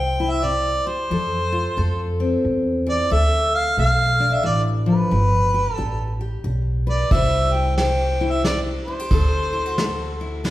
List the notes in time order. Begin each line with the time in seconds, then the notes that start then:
Already playing: C2 G3 G4 C5 G5
0.20 E4
0.30 E5
0.44 C3 D5
0.86 G4 C5
1.11 F2 F3 A4
1.52 F4
1.77 F2 A3 A4
2.20 C4
2.45 E2
2.87 E3 D5
3.10 D2 D3 A4 E5
3.55 F5
3.77 B1 A3 A4 F5
4.20 D4
4.33 E5
4.43 A1 E3 D5
4.86 F3 B4
5.11 G1 G3 G4
5.54 G4
5.74 A1 D4 A4
5.78 G4
6.21 G4
6.44 B1 D3
6.87 B4 D5
7.11 C2 C3 G3 E4 G4 C5 E5, kick, ride
7.53 G4 G5
7.77 G3 C5 G5, snare, ride
8.21 E4
8.31 E5
8.44 C3 D5, snare, ride
8.85 E4 C5
9.00 G4
9.11 D2 D3 A4, kick, ride
9.53 E4
9.66 F#4
9.78 A3 A4, snare, ride
10.21 E4
10.44 A2, snare, ride